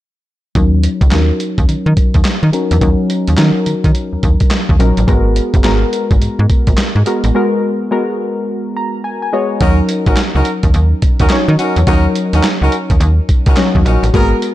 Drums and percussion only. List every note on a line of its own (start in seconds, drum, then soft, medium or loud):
0.55 kick loud
0.55 closed hi-hat medium
0.83 closed hi-hat medium
1.01 kick medium
1.01 closed hi-hat medium
1.11 snare loud
1.11 clap medium
1.11 closed hi-hat medium
1.40 closed hi-hat medium
1.58 kick medium
1.58 closed hi-hat medium
1.69 closed hi-hat medium
1.97 kick medium
1.97 closed hi-hat medium
2.14 kick medium
2.14 closed hi-hat medium
2.25 snare loud
2.25 clap medium
2.25 closed hi-hat medium
2.53 closed hi-hat medium
2.71 closed hi-hat medium
2.81 kick loud
2.81 closed hi-hat medium
3.10 closed hi-hat medium
3.27 closed hi-hat medium
3.37 snare loud
3.37 clap medium
3.37 closed hi-hat medium
3.66 closed hi-hat medium
3.84 kick medium
3.84 closed hi-hat medium
3.95 closed hi-hat medium
4.23 kick medium
4.23 closed hi-hat medium
4.40 kick loud
4.40 closed hi-hat medium
4.51 snare loud
4.51 clap medium
4.51 closed hi-hat medium
4.69 kick medium
4.80 closed hi-hat medium
4.97 closed hi-hat medium
5.08 kick loud
5.08 closed hi-hat medium
5.36 closed hi-hat medium
5.54 kick medium
5.54 closed hi-hat medium
5.64 snare loud
5.64 clap medium
5.64 closed hi-hat medium
5.93 closed hi-hat medium
6.11 kick medium
6.11 closed hi-hat soft
6.22 closed hi-hat medium
6.50 kick medium
6.50 closed hi-hat medium
6.67 kick medium
6.67 closed hi-hat medium
6.77 snare loud
6.77 clap medium
6.77 closed hi-hat medium
7.06 closed hi-hat medium
7.24 closed hi-hat medium
9.61 kick loud
9.61 closed hi-hat medium
9.89 closed hi-hat medium
10.06 kick medium
10.06 closed hi-hat medium
10.16 snare loud
10.16 clap medium
10.16 closed hi-hat medium
10.45 closed hi-hat medium
10.63 kick medium
10.63 closed hi-hat medium
10.74 closed hi-hat medium
11.02 kick medium
11.02 closed hi-hat medium
11.19 kick loud
11.19 closed hi-hat medium
11.29 snare loud
11.29 clap medium
11.29 closed hi-hat medium
11.59 closed hi-hat medium
11.76 closed hi-hat medium
11.87 kick loud
11.87 closed hi-hat medium
12.15 closed hi-hat medium
12.33 closed hi-hat medium
12.43 snare loud
12.43 clap medium
12.43 closed hi-hat medium
12.72 closed hi-hat medium
12.90 kick medium
12.90 closed hi-hat medium
13.01 closed hi-hat medium
13.29 kick medium
13.29 closed hi-hat medium
13.46 kick loud
13.46 closed hi-hat medium
13.56 snare loud
13.56 clap medium
13.56 closed hi-hat medium
13.75 kick medium
13.86 closed hi-hat medium
14.04 closed hi-hat medium
14.14 kick loud
14.14 closed hi-hat medium
14.42 closed hi-hat medium